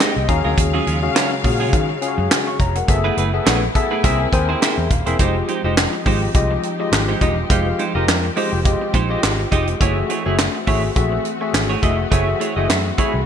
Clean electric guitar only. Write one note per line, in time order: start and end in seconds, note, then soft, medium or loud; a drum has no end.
0.00 0.16 G#3 medium
0.00 0.16 D#4 medium
0.00 0.15 G4 medium
0.00 0.16 C5 medium
0.16 muted clean electric guitar stroke soft
0.29 muted clean electric guitar stroke soft
0.45 0.56 F#3 medium
0.45 0.55 C#4 medium
0.45 0.55 F4 medium
0.45 0.55 A#4 medium
0.74 0.85 F#3 medium
0.74 0.86 C#4 medium
0.74 0.86 F4 medium
0.74 0.86 G#4 medium
0.86 0.99 F#3 medium
0.86 1.00 C#4 medium
0.86 1.00 F4 medium
0.86 1.00 G#4 medium
1.03 muted clean electric guitar stroke soft
1.15 1.31 F#3 medium
1.15 1.31 C#4 medium
1.15 1.31 F4 medium
1.15 1.31 A#4 medium
1.31 muted clean electric guitar stroke soft
1.44 muted clean electric guitar stroke soft
1.60 1.71 F#3 medium
1.60 1.71 C#4 medium
1.60 1.71 F4 medium
1.60 1.70 G#4 medium
1.73 muted clean electric guitar stroke medium
1.89 muted clean electric guitar stroke soft
2.18 muted clean electric guitar stroke soft
2.31 muted clean electric guitar stroke soft
2.47 muted clean electric guitar stroke soft
2.76 muted clean electric guitar stroke soft
2.88 muted clean electric guitar stroke soft
3.04 3.16 A3 medium
3.04 3.16 E4 medium
3.04 3.16 G#4 medium
3.04 3.17 B4 medium
3.17 3.30 A3 medium
3.17 3.30 E4 medium
3.17 3.30 G#4 medium
3.17 3.31 B4 medium
3.46 3.62 A3 medium
3.46 3.62 E4 medium
3.46 3.61 G#4 loud
3.46 3.62 C#5 medium
3.62 muted clean electric guitar stroke soft
3.75 muted clean electric guitar stroke soft
3.91 4.02 A3 medium
3.91 4.02 E4 medium
3.91 4.01 G#4 medium
3.91 4.01 B4 medium
4.04 4.20 A#3 medium
4.04 4.20 E4 medium
4.04 4.19 G#4 loud
4.04 4.19 C5 loud
4.20 muted clean electric guitar stroke soft
4.33 muted clean electric guitar stroke soft
4.49 4.60 A#3 medium
4.49 4.59 E4 medium
4.49 4.59 G#4 medium
4.49 4.59 C5 medium
4.61 4.78 A#3 medium
4.61 4.77 E4 medium
4.61 4.77 G#4 medium
4.61 4.76 C5 medium
4.78 muted clean electric guitar stroke medium
4.91 muted clean electric guitar stroke soft
5.06 5.17 A#3 medium
5.06 5.17 E4 medium
5.06 5.17 G#4 medium
5.06 5.17 C5 medium
5.19 5.36 G#3 medium
5.19 5.36 D#4 medium
5.19 5.36 G4 medium
5.19 5.36 C5 loud
5.48 5.61 G#3 medium
5.48 5.61 D#4 medium
5.48 5.61 G4 medium
5.48 5.62 C5 medium
5.64 5.75 G#3 medium
5.64 5.75 D#4 medium
5.64 5.75 G4 medium
5.64 5.74 C5 medium
5.93 muted clean electric guitar stroke soft
6.06 6.22 G#3 medium
6.06 6.22 D#4 medium
6.06 6.22 G4 medium
6.06 6.21 C5 medium
6.22 muted clean electric guitar stroke soft
6.35 muted clean electric guitar stroke soft
6.51 muted clean electric guitar stroke soft
6.80 muted clean electric guitar stroke soft
6.92 muted clean electric guitar stroke soft
7.08 7.19 G#3 medium
7.08 7.19 D#4 medium
7.08 7.19 G4 medium
7.08 7.19 C5 medium
7.21 7.38 G#3 loud
7.21 7.37 D#4 loud
7.21 7.37 G4 loud
7.21 7.37 D#5 medium
7.37 muted clean electric guitar stroke medium
7.50 7.66 G#3 medium
7.50 7.67 D#4 medium
7.50 7.67 G4 medium
7.50 7.67 C5 medium
7.79 7.92 G#3 medium
7.79 7.92 D#4 medium
7.79 7.92 G4 medium
7.79 7.92 C5 medium
7.95 8.06 G#3 medium
7.95 8.06 D#4 medium
7.95 8.05 G4 medium
7.95 8.05 D#5 medium
8.08 muted clean electric guitar stroke soft
8.24 muted clean electric guitar stroke soft
8.36 8.53 G#3 medium
8.36 8.52 D#4 medium
8.36 8.52 G4 loud
8.36 8.51 C5 loud
8.53 muted clean electric guitar stroke medium
8.65 muted clean electric guitar stroke soft
8.81 muted clean electric guitar stroke soft
8.94 9.10 G#3 medium
8.94 9.10 D#4 medium
8.94 9.09 G4 medium
8.94 9.09 C5 loud
9.10 9.21 G#3 soft
9.10 9.21 D#4 medium
9.10 9.21 G4 medium
9.10 9.20 C5 medium
9.39 muted clean electric guitar stroke soft
9.52 9.68 G#3 medium
9.52 9.68 D#4 loud
9.52 9.68 G4 medium
9.52 9.68 D#5 loud
9.68 muted clean electric guitar stroke medium
9.81 9.97 A3 medium
9.81 9.97 E4 medium
9.81 9.98 G#4 medium
9.81 9.98 C#5 loud
10.10 10.23 A3 medium
10.10 10.23 E4 medium
10.10 10.23 G#4 medium
10.10 10.23 C#5 medium
10.26 10.36 A3 medium
10.26 10.36 E4 medium
10.26 10.36 G#4 medium
10.26 10.36 C#5 medium
10.39 muted clean electric guitar stroke soft
10.54 muted clean electric guitar stroke soft
10.67 10.84 A3 medium
10.67 10.83 E4 medium
10.67 10.83 G#4 loud
10.67 10.82 C#5 loud
10.83 muted clean electric guitar stroke soft
10.96 muted clean electric guitar stroke soft
11.12 muted clean electric guitar stroke soft
11.41 muted clean electric guitar stroke medium
11.54 muted clean electric guitar stroke soft
11.69 11.81 A3 medium
11.69 11.80 E4 medium
11.69 11.80 G#4 medium
11.69 11.80 C#5 medium
11.82 11.99 A3 medium
11.82 11.98 E4 loud
11.82 11.98 G#4 loud
11.82 11.98 D#5 loud
11.99 muted clean electric guitar stroke soft
12.11 12.28 A3 medium
12.11 12.28 E4 medium
12.11 12.28 G#4 medium
12.11 12.28 C#5 medium
12.40 12.53 A3 medium
12.40 12.53 E4 medium
12.40 12.53 G#4 medium
12.40 12.54 C#5 medium
12.56 12.67 A3 medium
12.56 12.67 E4 medium
12.56 12.67 G#4 medium
12.56 12.67 D#5 medium
12.85 muted clean electric guitar stroke medium
12.98 13.14 A3 medium
12.98 13.14 E4 loud
12.98 13.13 G#4 loud
12.98 13.13 C#5 medium
13.14 muted clean electric guitar stroke soft